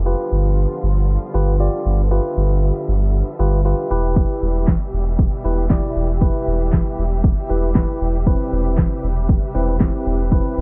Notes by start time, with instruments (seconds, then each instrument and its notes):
Already playing: sub bass F1, string section F3
0.06 string section D3 G3 B3 F4, tine electric piano F4 G4 B4
0.32 sub bass G1
0.83 sub bass G1
1.34 sub bass G1, tine electric piano F4 G4 B4
1.60 tine electric piano F4 G4 D5
1.86 sub bass G1
2.11 tine electric piano F4 G4 B4, string section E5
2.37 sub bass G1
2.88 sub bass G1
3.39 sub bass G1, tine electric piano F4 G4 B4
3.65 tine electric piano F4 G4 B4
3.91 sub bass E1, string section B2 E3 G4, tine electric piano E4 G4 B4
4.16 kick
4.29 closed hi-hat
4.42 sub bass E1
4.55 closed hi-hat
4.67 kick, snare, clap
4.80 closed hi-hat
4.93 sub bass E1
5.06 closed hi-hat
5.19 kick
5.32 closed hi-hat
5.44 sub bass E1, tine electric piano E4 G4 B4
5.57 closed hi-hat
5.70 tine electric piano E4 G4 D5, kick, snare, clap
5.83 closed hi-hat
5.96 sub bass E1
6.09 closed hi-hat
6.21 tine electric piano E4 G4 B4, kick
6.34 closed hi-hat
6.47 sub bass E1
6.60 closed hi-hat
6.73 kick, snare, clap
6.85 closed hi-hat
6.98 sub bass E1
7.11 closed hi-hat
7.24 kick
7.37 closed hi-hat
7.50 sub bass E1, tine electric piano E4 G4 B4
7.62 closed hi-hat
7.75 tine electric piano E4 G4 B4, kick, snare, clap
7.88 closed hi-hat
8.01 sub bass E1
8.14 closed hi-hat
8.26 string section C3 B4, tine electric piano C4 E4 B4, kick
8.39 closed hi-hat
8.52 sub bass E1
8.65 closed hi-hat
8.78 kick, snare, clap
8.91 closed hi-hat
9.04 sub bass E1
9.16 closed hi-hat
9.29 kick
9.42 closed hi-hat
9.55 sub bass E1, tine electric piano C4 E4 B4
9.67 closed hi-hat
9.80 tine electric piano C4 E4 G4, kick, snare, clap
9.93 closed hi-hat
10.06 sub bass E1
10.19 closed hi-hat
10.31 tine electric piano C4 E4 B4, kick
10.45 closed hi-hat
10.57 sub bass E1, open hi-hat